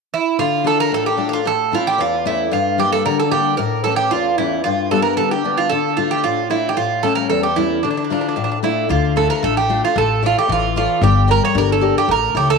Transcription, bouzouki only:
0.14 0.38 E4 medium
0.39 0.66 F4 medium
0.67 0.78 A4 medium
0.80 0.92 A#4 loud
0.94 1.06 A4 medium
1.06 1.27 G4 medium
1.29 1.32 G4 medium
1.33 1.46 F4 medium
1.47 1.73 A4 medium
1.75 1.86 F4 medium
1.87 2.00 G4 medium
2.01 2.24 F4 medium
2.27 2.51 E4 medium
2.53 2.80 F4 medium
2.80 2.92 G4 medium
2.92 3.04 A4 medium
3.06 3.19 A#4 medium
3.20 3.31 A4 medium
3.32 3.56 G4 medium
3.57 3.82 A#4 medium
3.84 3.96 A4 medium
3.96 4.11 G4 medium
4.11 4.36 F4 medium
4.38 4.63 E4 medium
4.64 4.89 F4 medium
4.91 5.02 A4 medium
5.02 5.17 A#4 medium
5.17 5.31 A4 medium
5.31 5.58 G4 medium
5.58 5.70 F4 medium
5.69 5.97 A4 medium
5.97 6.11 F4 medium
6.11 6.23 G4 medium
6.24 6.48 F4 medium
6.50 6.69 E4 medium
6.69 6.76 G4 medium
6.77 7.04 F4 medium
7.03 7.15 A4 medium
7.15 7.28 A#4 medium
7.30 7.43 A4 medium
7.43 7.56 G4 medium
7.56 7.81 E4 medium
7.83 7.89 D4 medium
7.91 7.96 D4 soft
7.97 8.03 D4 soft
8.04 8.11 D4 soft
8.12 8.20 D4 soft
8.21 8.27 D4 soft
8.29 8.35 D4 soft
8.36 8.43 D4 soft
8.44 8.50 D4 soft
8.52 8.58 D4 soft
8.64 8.90 E4 medium
8.90 9.15 F4 medium
9.17 9.29 A4 medium
9.30 9.42 A#4 medium
9.44 9.56 A4 medium
9.57 9.81 G4 medium
9.85 9.96 F4 medium
9.98 10.22 A4 medium
10.26 10.37 F4 medium
10.38 10.49 G4 medium
10.52 10.75 F4 medium
10.77 11.03 F4 medium
11.03 11.27 G4 medium
11.31 11.42 A#4 medium
11.45 11.57 C#5 medium
11.58 11.70 A#4 medium
11.72 11.95 A4 medium
11.98 12.10 G4 medium
12.11 12.34 A#4 medium
12.37 12.49 G4 medium
12.50 12.58 A4 medium

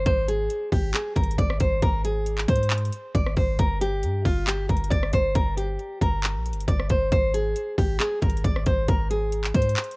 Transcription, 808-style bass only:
0.06 0.48 G#1 loud
0.72 0.93 G#1 loud
1.16 1.37 G#1 loud
1.38 1.59 G#1 loud
1.60 1.82 G#1 loud
1.82 2.46 G#1 loud
2.49 2.91 G#2 loud
3.15 3.36 G#1 loud
3.37 3.58 G#1 loud
3.59 4.04 G1 loud
4.03 4.24 G2 loud
4.25 4.67 G1 loud
4.69 4.90 G1 loud
4.91 5.12 G1 loud
5.13 5.35 G1 loud
5.35 5.78 G1 loud
6.01 6.37 G1 loud
6.35 6.53 A#1 loud
6.52 6.67 G1 loud
6.68 6.89 G1 loud
6.90 7.11 G1 loud
7.12 7.54 G#1 loud
7.78 7.99 G#1 loud
8.22 8.43 G#1 loud
8.44 8.65 G#1 loud
8.66 8.87 G#1 loud
8.88 9.52 G#1 loud
9.54 9.76 G#2 loud

